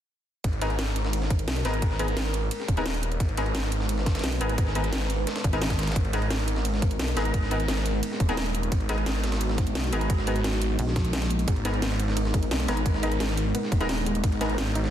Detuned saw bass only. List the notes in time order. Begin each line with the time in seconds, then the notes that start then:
0.44 G#1
0.62 G#1
1.48 B1
1.65 G#1
2.68 D#1
3.20 G#1
3.37 G#1
4.24 B1
4.41 G#1
5.96 G#1
6.13 G#1
6.99 B1
7.17 G#1
8.20 D#1
8.72 G#1
8.89 G#1
9.75 B1
9.93 G#1
11.48 G#1
11.65 G#1
12.51 B1
12.68 G#1
13.72 D#1
14.24 G#1
14.41 G#1